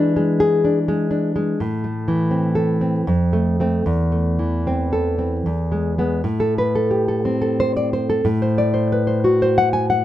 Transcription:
Already playing: E3 G#3 D4
0.16 G#3
0.40 G#4
0.65 D4
0.88 G#3
1.11 D4
1.36 G#3
1.60 A2
1.84 A3
2.08 E3
2.31 C4
2.55 A4
2.81 C4
3.07 F2
3.33 A3
3.60 A3 C4
3.86 E2
4.12 A3
4.39 E3
4.67 C4
4.93 A4
5.19 C4
5.46 E2
5.72 G#3
5.98 G#3 B3
6.24 A2
6.40 A4
6.58 B4
6.75 A4
6.91 G4
7.08 A4
7.25 C4
7.42 A4
7.60 C5
7.77 D5
7.93 C5
8.10 A4
8.25 A2
8.42 C5
8.58 D5
8.74 C5
8.92 B4
9.07 C5
9.24 F#4
9.42 C5
9.58 F#5
9.73 G#5
9.90 F#5

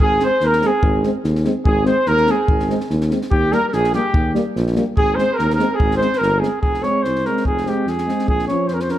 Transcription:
0.00 G#1 G#4, kick
0.20 G#3 C4 C5, snare
0.25 C5
0.41 D#2 A#4, snare
0.47 A#4
0.53 snare
0.62 G#3 C4, snare
0.66 G#4
0.82 G#1, kick
1.04 G#3 C4, snare
1.24 D#2, snare
1.35 snare
1.45 G#3 C4, snare
1.65 G#1 G#4, kick
1.86 G#3 C4 C5, snare
2.06 D#2 A#4, snare
2.17 snare
2.27 G#3 C4 G#4, snare
2.48 G#1, kick
2.60 snare
2.69 G#3 C4, snare
2.80 snare
2.90 D#2, snare
3.01 snare
3.11 G#3 C4, snare
3.22 snare
3.31 D#2 G4, kick
3.52 G3 A#3 A#4, snare
3.68 A#4
3.73 A#1 G#4, snare
3.84 snare
3.93 G3 A#3 G4, snare
4.13 D#2, kick
4.34 G3 A#3, snare
4.56 A#1, snare
4.67 snare
4.75 G3 A#3, snare
4.97 G#1 G#4, kick
5.15 G#3 C4 C5, snare
5.33 A#4
5.39 D#2, snare
5.50 A#4, snare
5.55 G#3 A#4, snare
5.60 C4
5.74 G#4
5.80 G#1, kick
5.91 snare
5.97 G#3 C5
6.01 C4, snare
6.13 A#4, snare
6.18 G1 A#4
6.23 snare
6.39 G#3 C4 G#4
6.43 snare
6.61 F1 G#4, kick
6.74 snare
6.82 G#3 C4 C#5, snare
7.03 C2 C5, snare
7.16 snare
7.24 G#3 C4 A#4, snare
7.37 snare
7.45 F1 G#4, kick
7.58 snare
7.65 G#3 C4 G4, snare
7.86 F2 G#4, snare
7.98 snare
8.06 G#3 C4, snare
8.19 snare
8.28 A#1 G#4, kick
8.39 snare
8.48 F3 C#4 C#5, snare
8.67 F2 C5, snare
8.74 A#4
8.80 C5, snare
8.89 F3 C#4 A#4, snare

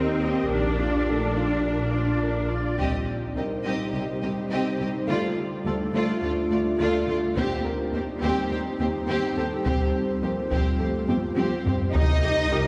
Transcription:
Already playing: D#2 A#3 C4 D#4 G4 A#4 D5
0.22 A#3 G4 D#5
0.50 A#1 A#2 D4 F4 A#4 D5
0.79 F4 D5
1.08 A3 D4 A4 A#4
1.36 F4 D5
1.65 D4 A#4
1.94 F4 D5
2.22 D4 A#4
2.50 F4 D5
2.78 C2 G3 C4 D#4 G4 C5 D#5, taiko
3.36 C2 C4 G4 A#4 D#5
3.65 C2 C4 G4 D#5
3.93 C2 C4 G4 D#5
4.22 C2 C4 G4 D#5
4.50 C2 C4 G4 D#5
4.80 C2 C4 G4 D#5
5.08 D2 A3 D4 F4 D5
5.65 D2 A3 F4 A4 D5
5.94 D2 A3 F4 D5
6.23 D2 A3 F4 D5
6.51 D2 A3 F4 D5
6.79 D2 A3 F4 D5
7.08 D2 A3 F4 D5
7.36 D#2 G3 C4 D#4 G4 C5, taiko
7.65 A#4
7.93 D#2 C4 G4 C5
8.22 D#2 C4 G4 C5
8.51 D#2 C4 G4 C5
8.79 D#2 C4 G4 C5
9.08 D#2 C4 G4 C5
9.36 D#2 C4 G4 A4 C5
9.65 F2 C4 F4 G4 C5, taiko
10.23 F2 A#3 C4 G4 C5
10.51 F2 C4 G4 C5, taiko
10.79 F2 A3 C4 G4 A4 C5
11.08 F2 C4 G4 C5, taiko high
11.37 F2 C4 G4 C5, taiko high
11.65 F2 C4 G4 C5, taiko low
11.94 C2 G3 C4 D#4 G4 C5 D#5, taiko
12.23 D#4 G4
12.51 C2 D#4 G4 A#4

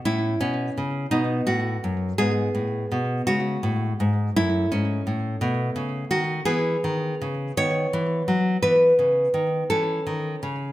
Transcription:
0.05 A2 C#4 E4
0.41 B2 C#4
0.78 C#3
1.11 B2 B3 D#4
1.47 A2 F#4
1.84 F#2
2.18 G#2 B3 G#4
2.55 A2
2.92 B2
3.27 C#3 G#3 F#4
3.63 A2
4.00 G#2
4.36 F#2 A3 E4
4.72 G#2 C#4
5.07 A2
5.41 B2 A3
5.76 C#3
6.11 D#3 F#4
6.45 E3 B3 G#4
6.84 D#3
7.21 C#3
7.57 D#3 B3 C#5
7.93 E3
8.28 F#3
8.62 E3 B3 B4
8.99 C#3
9.34 D#3
9.70 E3 C#4 A4
10.07 D#3
10.43 C#3

